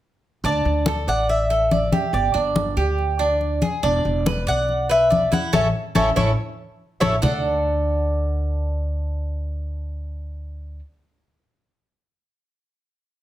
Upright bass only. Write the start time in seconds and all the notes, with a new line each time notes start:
0.44 D2
0.65 D2
1.07 A1
2.13 G1
2.34 G1
2.77 D2
3.83 E1
4.05 E1
4.47 B1
5.53 A1
5.96 A1
6.17 A1
7.01 A1
7.23 D2